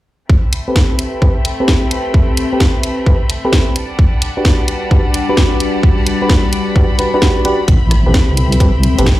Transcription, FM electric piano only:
0.68 1.20 C4 medium
0.68 1.20 G4 medium
0.68 1.20 A4 medium
0.68 1.20 B4 medium
1.22 1.31 C4 medium
1.22 1.31 G4 medium
1.22 1.31 A4 medium
1.22 1.31 B4 medium
1.60 2.49 C4 medium
1.60 2.49 G4 medium
1.60 2.49 A4 medium
1.60 2.49 B4 medium
2.53 3.05 C4 medium
2.53 3.05 G4 medium
2.53 3.05 A4 medium
2.53 3.05 B4 medium
3.07 3.16 C4 medium
3.07 3.16 G4 medium
3.07 3.16 A4 medium
3.07 3.16 B4 medium
3.45 3.75 C4 medium
3.45 3.75 G4 medium
3.45 3.75 A4 medium
3.45 3.75 B4 loud
4.37 4.89 D4 medium
4.37 4.89 F#4 medium
4.37 4.89 G4 medium
4.37 4.89 B4 medium
4.91 5.00 D4 medium
4.91 5.00 F#4 medium
4.91 5.00 G4 medium
4.91 5.00 B4 medium
5.29 6.18 D4 medium
5.29 6.18 F#4 medium
5.29 6.18 G4 medium
5.29 6.18 B4 medium
6.22 6.74 D4 medium
6.22 6.74 F#4 medium
6.22 6.74 G4 medium
6.22 6.74 B4 medium
6.76 6.85 D4 medium
6.76 6.85 F#4 medium
6.76 6.85 G4 medium
6.76 6.85 B4 medium
6.99 7.10 D4 medium
6.99 7.10 F#4 medium
6.99 7.10 G4 medium
6.99 7.10 B4 medium
7.14 7.21 D4 medium
7.14 7.21 F#4 medium
7.14 7.21 G4 medium
7.14 7.21 B4 loud
7.22 7.43 D4 medium
7.22 7.43 F#4 medium
7.22 7.43 G4 medium
7.22 7.43 B4 loud
7.45 7.59 D4 medium
7.45 7.59 F#4 medium
7.45 7.59 G4 medium
7.45 7.59 B4 loud
8.06 8.58 C4 medium
8.06 8.58 G4 medium
8.06 8.58 A4 medium
8.06 8.58 B4 medium
8.60 8.69 C4 medium
8.60 8.69 G4 medium
8.60 8.69 A4 medium
8.60 8.69 B4 medium
8.98 9.20 C4 medium
8.98 9.20 G4 medium
8.98 9.20 A4 medium
8.98 9.20 B4 medium

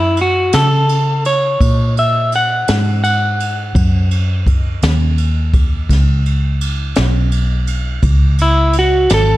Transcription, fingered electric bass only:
0.00 0.50 F#2 medium
0.54 1.58 C#3 medium
1.61 2.65 A#2 medium
2.69 3.72 G#2 medium
3.75 4.79 F#2 medium
4.83 5.87 D#2 medium
5.90 6.94 C#2 medium
6.98 8.01 B1 medium
8.04 9.07 C#2 medium
9.11 9.37 G#1 medium

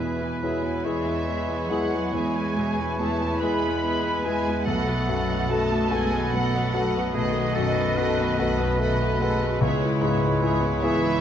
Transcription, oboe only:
0.00 0.86 B4 soft
0.84 3.40 C#5 soft
3.40 4.63 B4 soft
4.66 6.83 A4 soft
7.14 7.53 G#4 medium
7.55 7.98 A4 medium
7.97 9.61 B4 medium
9.62 11.21 C#5 medium

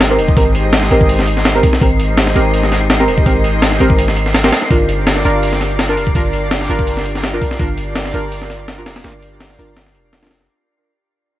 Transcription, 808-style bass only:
0.00 0.20 G#1 medium
0.19 0.35 D#1 medium
0.37 0.90 G#1 loud
0.91 1.62 G#1 medium
1.81 2.34 G#1 loud
2.36 3.09 G#1 loud
3.08 3.24 D#1 medium
3.26 3.79 G#1 loud
3.80 4.51 G#1 loud
4.71 5.23 G1 loud
5.25 5.99 G1 loud
5.97 6.13 F1 medium
6.15 6.68 G1 loud
6.69 7.40 G1 medium
7.60 8.13 G1 loud
8.14 8.88 G1 medium
8.86 9.03 F1 medium
9.04 9.57 G1 loud
9.59 9.96 G1 loud
9.95 10.48 F1 loud

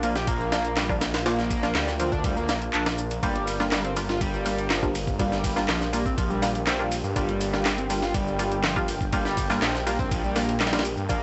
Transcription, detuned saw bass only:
0.00 1.72 A#1 loud
1.75 2.50 D2 loud
2.49 2.70 A#1 loud
2.74 3.20 A#1 medium
3.23 5.66 G1 loud
5.69 7.03 A#1 loud
7.04 7.14 G2 loud
7.16 9.59 G1 loud
9.62 10.97 A#1 loud
10.97 11.08 G2 loud
11.10 11.23 A#1 loud

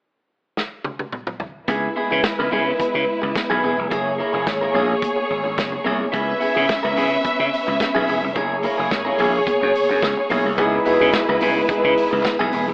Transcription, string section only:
1.68 3.87 G#3 medium
1.68 3.87 E4 medium
1.68 3.87 B4 medium
3.92 6.10 A#3 medium
3.92 6.10 G#4 medium
3.92 6.10 C#5 medium
6.14 8.32 C#4 medium
6.14 8.32 B4 medium
6.14 8.32 E5 medium
8.36 10.54 A#3 medium
8.36 10.54 G#4 medium
8.36 10.54 C#5 medium
10.59 12.74 G#3 medium
10.59 12.74 E4 medium
10.59 12.74 B4 loud

